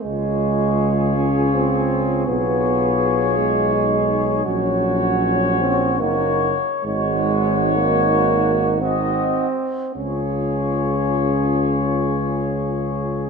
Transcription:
0, 0, Header, 1, 6, 480
1, 0, Start_track
1, 0, Key_signature, -5, "major"
1, 0, Tempo, 750939
1, 28, Time_signature, 3, 2, 24, 8
1, 988, Tempo, 732601
1, 3388, Tempo, 820793
1, 4348, Tempo, 924499
1, 4828, Tempo, 1047120
1, 5308, Tempo, 1136364
1, 7198, End_track
2, 0, Start_track
2, 0, Title_t, "Trumpet section"
2, 0, Program_c, 0, 61
2, 37, Note_on_c, 0, 73, 54
2, 1443, Note_off_c, 0, 73, 0
2, 1470, Note_on_c, 0, 73, 50
2, 2871, Note_off_c, 0, 73, 0
2, 2894, Note_on_c, 0, 73, 54
2, 3834, Note_off_c, 0, 73, 0
2, 3853, Note_on_c, 0, 73, 54
2, 4337, Note_off_c, 0, 73, 0
2, 4350, Note_on_c, 0, 73, 59
2, 5235, Note_off_c, 0, 73, 0
2, 5313, Note_on_c, 0, 75, 52
2, 5583, Note_off_c, 0, 75, 0
2, 5789, Note_on_c, 0, 73, 42
2, 7198, Note_off_c, 0, 73, 0
2, 7198, End_track
3, 0, Start_track
3, 0, Title_t, "Flugelhorn"
3, 0, Program_c, 1, 56
3, 30, Note_on_c, 1, 68, 44
3, 1440, Note_off_c, 1, 68, 0
3, 1451, Note_on_c, 1, 68, 46
3, 2862, Note_off_c, 1, 68, 0
3, 2890, Note_on_c, 1, 66, 47
3, 3832, Note_off_c, 1, 66, 0
3, 3847, Note_on_c, 1, 66, 54
3, 4160, Note_off_c, 1, 66, 0
3, 4339, Note_on_c, 1, 66, 53
3, 5286, Note_off_c, 1, 66, 0
3, 5304, Note_on_c, 1, 66, 49
3, 5579, Note_off_c, 1, 66, 0
3, 5782, Note_on_c, 1, 68, 39
3, 7198, Note_off_c, 1, 68, 0
3, 7198, End_track
4, 0, Start_track
4, 0, Title_t, "Euphonium"
4, 0, Program_c, 2, 58
4, 32, Note_on_c, 2, 65, 45
4, 1440, Note_off_c, 2, 65, 0
4, 1465, Note_on_c, 2, 65, 42
4, 2413, Note_on_c, 2, 63, 42
4, 2422, Note_off_c, 2, 65, 0
4, 2889, Note_on_c, 2, 61, 50
4, 2899, Note_off_c, 2, 63, 0
4, 3851, Note_on_c, 2, 63, 46
4, 3860, Note_off_c, 2, 61, 0
4, 4168, Note_off_c, 2, 63, 0
4, 4347, Note_on_c, 2, 63, 53
4, 5289, Note_off_c, 2, 63, 0
4, 5311, Note_on_c, 2, 63, 45
4, 5582, Note_off_c, 2, 63, 0
4, 5797, Note_on_c, 2, 65, 39
4, 7198, Note_off_c, 2, 65, 0
4, 7198, End_track
5, 0, Start_track
5, 0, Title_t, "Trombone"
5, 0, Program_c, 3, 57
5, 10, Note_on_c, 3, 56, 67
5, 737, Note_off_c, 3, 56, 0
5, 741, Note_on_c, 3, 61, 57
5, 986, Note_on_c, 3, 60, 63
5, 996, Note_off_c, 3, 61, 0
5, 1462, Note_on_c, 3, 59, 63
5, 1472, Note_off_c, 3, 60, 0
5, 2177, Note_off_c, 3, 59, 0
5, 2182, Note_on_c, 3, 56, 59
5, 2895, Note_on_c, 3, 54, 61
5, 2905, Note_off_c, 3, 56, 0
5, 3619, Note_on_c, 3, 60, 72
5, 3628, Note_off_c, 3, 54, 0
5, 3850, Note_on_c, 3, 58, 63
5, 3859, Note_off_c, 3, 60, 0
5, 4168, Note_off_c, 3, 58, 0
5, 4346, Note_on_c, 3, 56, 72
5, 4827, Note_on_c, 3, 58, 70
5, 4834, Note_off_c, 3, 56, 0
5, 5301, Note_off_c, 3, 58, 0
5, 5304, Note_on_c, 3, 60, 66
5, 5779, Note_off_c, 3, 60, 0
5, 5787, Note_on_c, 3, 61, 53
5, 7198, Note_off_c, 3, 61, 0
5, 7198, End_track
6, 0, Start_track
6, 0, Title_t, "Tuba"
6, 0, Program_c, 4, 58
6, 35, Note_on_c, 4, 37, 48
6, 1443, Note_off_c, 4, 37, 0
6, 1470, Note_on_c, 4, 35, 47
6, 2871, Note_off_c, 4, 35, 0
6, 2898, Note_on_c, 4, 34, 51
6, 3855, Note_on_c, 4, 30, 51
6, 3864, Note_off_c, 4, 34, 0
6, 4170, Note_off_c, 4, 30, 0
6, 4345, Note_on_c, 4, 32, 57
6, 5568, Note_off_c, 4, 32, 0
6, 5791, Note_on_c, 4, 37, 45
6, 7198, Note_off_c, 4, 37, 0
6, 7198, End_track
0, 0, End_of_file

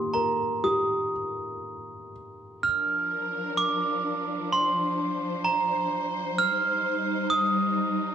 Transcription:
0, 0, Header, 1, 4, 480
1, 0, Start_track
1, 0, Tempo, 995025
1, 1271, Time_signature, 4, 2, 24, 8
1, 1272, Tempo, 930233
1, 4116, End_track
2, 0, Start_track
2, 0, Title_t, "Glockenspiel"
2, 0, Program_c, 0, 9
2, 0, Note_on_c, 0, 84, 79
2, 50, Note_off_c, 0, 84, 0
2, 65, Note_on_c, 0, 82, 64
2, 174, Note_off_c, 0, 82, 0
2, 309, Note_on_c, 0, 87, 62
2, 1020, Note_off_c, 0, 87, 0
2, 1270, Note_on_c, 0, 89, 83
2, 1756, Note_on_c, 0, 86, 80
2, 1772, Note_off_c, 0, 89, 0
2, 2246, Note_on_c, 0, 84, 78
2, 2256, Note_off_c, 0, 86, 0
2, 2721, Note_on_c, 0, 82, 74
2, 2739, Note_off_c, 0, 84, 0
2, 3060, Note_off_c, 0, 82, 0
2, 3206, Note_on_c, 0, 89, 92
2, 3678, Note_on_c, 0, 87, 84
2, 3693, Note_off_c, 0, 89, 0
2, 4116, Note_off_c, 0, 87, 0
2, 4116, End_track
3, 0, Start_track
3, 0, Title_t, "Felt piano"
3, 0, Program_c, 1, 0
3, 0, Control_c, 1, 64, 127
3, 0, Note_on_c, 1, 51, 57
3, 0, Note_on_c, 1, 58, 45
3, 0, Note_on_c, 1, 67, 43
3, 69, Note_on_c, 1, 70, 47
3, 299, Note_off_c, 1, 67, 0
3, 307, Note_on_c, 1, 67, 45
3, 532, Note_off_c, 1, 58, 0
3, 1019, Note_off_c, 1, 70, 0
3, 1250, Note_off_c, 1, 67, 0
3, 1252, Note_off_c, 1, 51, 0
3, 1279, Control_c, 1, 64, 0
3, 4116, End_track
4, 0, Start_track
4, 0, Title_t, "String section"
4, 0, Program_c, 2, 48
4, 1278, Note_on_c, 2, 70, 59
4, 1279, Note_on_c, 2, 62, 53
4, 1280, Note_on_c, 2, 53, 60
4, 2236, Note_off_c, 2, 70, 0
4, 2245, Note_on_c, 2, 72, 67
4, 3186, Note_off_c, 2, 62, 0
4, 3187, Note_off_c, 2, 53, 0
4, 3200, Note_on_c, 2, 63, 59
4, 3201, Note_on_c, 2, 55, 64
4, 4116, Note_off_c, 2, 55, 0
4, 4116, Note_off_c, 2, 63, 0
4, 4116, Note_off_c, 2, 72, 0
4, 4116, End_track
0, 0, End_of_file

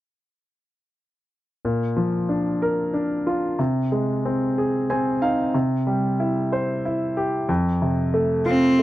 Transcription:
0, 0, Header, 1, 3, 480
1, 0, Start_track
1, 0, Key_signature, -2, "major"
1, 0, Tempo, 649351
1, 1212, Time_signature, 6, 3, 24, 8
1, 6523, End_track
2, 0, Start_track
2, 0, Title_t, "Grand piano"
2, 0, Program_c, 0, 0
2, 1217, Note_on_c, 0, 46, 38
2, 1336, Control_c, 0, 64, 127
2, 1453, Note_on_c, 0, 53, 33
2, 1693, Note_on_c, 0, 62, 30
2, 1938, Note_on_c, 0, 70, 37
2, 2159, Note_off_c, 0, 62, 0
2, 2170, Note_on_c, 0, 62, 33
2, 2384, Note_off_c, 0, 53, 0
2, 2415, Note_on_c, 0, 65, 34
2, 2625, Note_off_c, 0, 46, 0
2, 2634, Note_off_c, 0, 70, 0
2, 2637, Note_off_c, 0, 62, 0
2, 2647, Note_off_c, 0, 65, 0
2, 2652, Note_on_c, 0, 48, 43
2, 2662, Control_c, 0, 64, 0
2, 2807, Control_c, 0, 64, 127
2, 2897, Note_on_c, 0, 56, 30
2, 3144, Note_on_c, 0, 60, 34
2, 3386, Note_on_c, 0, 68, 35
2, 3610, Note_off_c, 0, 60, 0
2, 3621, Note_on_c, 0, 60, 35
2, 3621, Note_on_c, 0, 80, 43
2, 3827, Note_off_c, 0, 56, 0
2, 3841, Note_off_c, 0, 80, 0
2, 3858, Note_on_c, 0, 77, 42
2, 3860, Note_on_c, 0, 63, 36
2, 4064, Note_off_c, 0, 48, 0
2, 4079, Note_off_c, 0, 68, 0
2, 4079, Note_off_c, 0, 77, 0
2, 4083, Note_off_c, 0, 60, 0
2, 4090, Note_off_c, 0, 63, 0
2, 4098, Note_on_c, 0, 48, 43
2, 4104, Control_c, 0, 64, 0
2, 4246, Control_c, 0, 64, 127
2, 4336, Note_on_c, 0, 55, 35
2, 4581, Note_on_c, 0, 64, 35
2, 4823, Note_on_c, 0, 72, 37
2, 5055, Note_off_c, 0, 64, 0
2, 5066, Note_on_c, 0, 64, 38
2, 5267, Note_off_c, 0, 55, 0
2, 5300, Note_on_c, 0, 67, 38
2, 5507, Note_off_c, 0, 48, 0
2, 5518, Note_off_c, 0, 72, 0
2, 5526, Note_off_c, 0, 64, 0
2, 5530, Note_off_c, 0, 67, 0
2, 5534, Note_on_c, 0, 41, 50
2, 5544, Control_c, 0, 64, 0
2, 5661, Control_c, 0, 64, 127
2, 5779, Note_on_c, 0, 48, 34
2, 6015, Note_on_c, 0, 57, 39
2, 6252, Note_on_c, 0, 65, 37
2, 6486, Note_off_c, 0, 57, 0
2, 6497, Note_on_c, 0, 57, 37
2, 6523, Note_off_c, 0, 41, 0
2, 6523, Note_off_c, 0, 48, 0
2, 6523, Note_off_c, 0, 57, 0
2, 6523, Note_off_c, 0, 65, 0
2, 6523, End_track
3, 0, Start_track
3, 0, Title_t, "Cello"
3, 0, Program_c, 1, 42
3, 6263, Note_on_c, 1, 60, 74
3, 6523, Note_off_c, 1, 60, 0
3, 6523, End_track
0, 0, End_of_file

